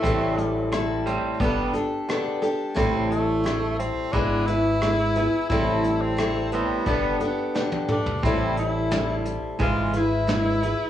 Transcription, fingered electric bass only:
X:1
M:4/4
L:1/8
Q:1/4=88
K:Am
V:1 name="Fingered electric bass" clef=bass
A,,,4 G,,, z3 | A,,,4 ^G,,,4 | A,,,4 G,,, z3 | A,,,4 ^G,,,4 |]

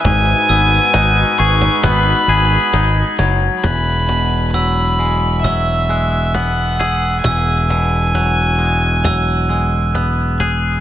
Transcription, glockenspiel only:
X:1
M:4/4
L:1/8
Q:1/4=67
K:E
V:1 name="Glockenspiel"
f' e' f'2 f' g'2 g' | f'2 e'2 e' f' f' e' | e'2 f'2 e'2 f' f' |]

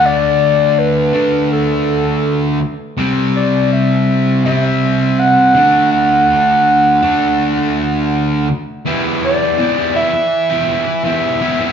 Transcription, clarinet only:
X:1
M:4/4
L:1/8
Q:1/4=82
K:Em
V:1 name="Clarinet"
d2 B2 A3 z | z d e2 e2 f2 | f6 z2 | z d2 e3 e2 |]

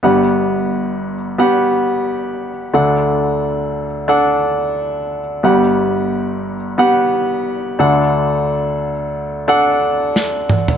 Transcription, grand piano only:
X:1
M:4/4
L:1/8
Q:"Swing 16ths" 1/4=89
K:G
V:1 name="Grand piano"
[B,Gf]3 z [B,Gf]3 z | [DAf]3 z [DAf]3 z | [B,Gf]3 z [B,Gf]3 [DAf]- | [DAf]2 z2 [DAf]3 z |]
V:2 name="Grand piano" clef=bass
[G,,,G,,]8 | [D,,D,]8 | [G,,,G,,]6- [G,,,G,,] [D,,D,]- | [D,,D,]6- [D,,D,] z |]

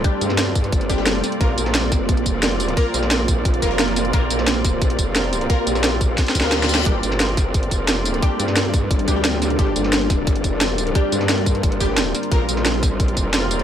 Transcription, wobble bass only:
X:1
M:4/4
L:1/8
Q:1/4=176
K:Gm
V:1 name="Wobble bass" clef=bass
z G,,3 G,,,3 z | B,,, B,,,3 B,,, F,,,3 | z B,,,3 B,,, F,,,3 | B,,, B,,,3 B,,, F,,,3 |
z B,,,3 z D,,3 | G,,, G,,,3 G,,, F,,,3 | z G,,3 G,,, D,,3 | G,,, G,,,3 G,,, F,,,3 |
z G,,3 G,,,3 z | B,,, B,,,3 B,,, F,,,3 |]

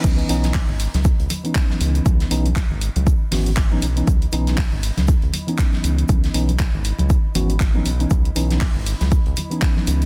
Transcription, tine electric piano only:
X:1
M:4/4
L:1/16
Q:"Swing 16ths" 1/4=119
K:C#m
V:1 name="Tine electric piano"
[E,B,CD]2 [E,B,CD]2 z6 z [E,B,CD]4- [E,B,CD]- | [E,B,CD]2 [E,B,CD] z6 z [E,B,CF] z2 [E,B,CD] z [E,B,CD] | z2 [E,B,CD]2 z6 z [E,B,CD]4- [E,B,CD]- | [E,B,CD]2 [E,B,CD] z6 z [E,B,CF] z2 [E,B,CD] z [E,B,CD] |
z2 [E,B,CD]2 z6 z [E,B,CD]4- [E,B,CD] |]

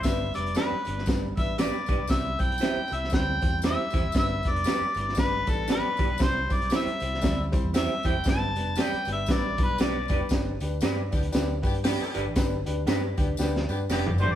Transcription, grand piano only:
X:1
M:4/4
L:1/8
Q:"Swing" 1/4=117
K:Gmix
V:1 name="Grand piano"
[G,B,DB] [G,B,DB] [G,B,DB] [G,B,DB] [G,B,DB] [G,B,DB] [G,B,DB] [G,B,DB] | [G,CEc] [G,CEc] [G,CEc] [G,CEc] [G,CEc] [G,CEc] [G,CEc] [G,CEc] | [G,B,DB] [G,B,DB] [G,B,DB] [G,B,DE] [G,B,DB] [G,B,DB] [G,B,DB] [G,B,DB] | [G,CEc] [G,CEc] [G,CEc] [G,CEc] [G,CEd] [G,CEc] [G,CEc] [G,CEc] |
[G,B,DB] [G,B,DB] [G,B,DB] [G,B,DB] [G,B,DB] [G,B,DB] [G,B,DB] [G,B,DB] | [DGB] [DGB] [DGB] [DGB] [DGB] [DGB] [DGB] [DGB] | [DGB] [DGB] [DGB] [DGB] [DGB] [DGB] [DGB] [DGB] |]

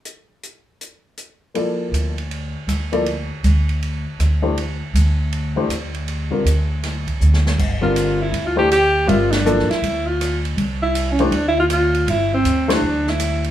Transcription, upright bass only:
X:1
M:4/4
L:1/8
Q:"Swing" 1/4=160
K:Gdor
V:1 name="Upright bass" clef=bass
z8 | z2 D,,3 z D,,2- | D,, z D,,3 z D,,2- | D,, z D,,3 z D,,2- |
D,, z D,,3 z D,,2 | G,,,4 D,,4 | G,,,3 z D,,4 | C,,4 D,,4 |
G,,,2 D,,2 D,,4 |]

